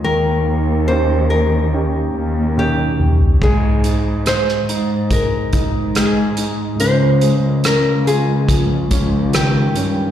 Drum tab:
CC |----------------|x---------------|----------------|
HH |----------------|--x-x-x-x-x-x-x-|x-x-x-x-x-x-x-x-|
SD |----------------|----rr------r---|----r-------r---|
T1 |------------o---|----------------|----------------|
T2 |--------------o-|----------------|----------------|
FT |---------------o|----------------|----------------|
BD |----------------|o-------o-o-----|--------o-o-----|